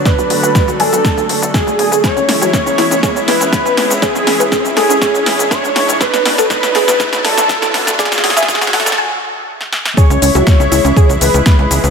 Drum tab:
HH |x-x-o-x-x-x-o-x-x-x-o-x-x-x-o-x-|x-x-o-x-x-x-o-x-x-x-o-x-x-x-o-x-|x-x-o-x-x-x-o-x-x-x-o-x-x-x-o-x-|x-x-o-x-x-x-o-x-x-x-o-x-x-x-o-x-|
SH |x-x---x-x-x---x-x-x---x-x-x---x-|x-x---x-x-x---x-x-x---x-x-x---x-|x-x---x-x-x---x-x-x---x-x-x---x-|x-x---x-x-x---x-x-x---x-x-x---x-|
SD |o-------o-------o-------o-------|o---o---o---o---o---o---o---o---|o---o---o---o---o---o---o---o---|o-o-o-o-o-o-o-o-o-o-o-o-o-o-o-o-|
BD |o-------o-------o-------o-------|o-------o-------o-------o-------|o-------o-------o-------o-------|o-------o-------o-------o-------|

HH |x-x-o-x-x-x-o-x-----------------|x-x-o-x-x-x-o-x-x-x-o-x-x-x-o-x-|
SH |x-x---x-x-x---x-----------------|x-x-x-x-x-x-x-x-x-x-x-x-x---x-x-|
SD |oooooooooooooooo----------o-o-o-|--------o---------------o-------|
BD |o-------o-----------------------|o-------o-------o-------o-------|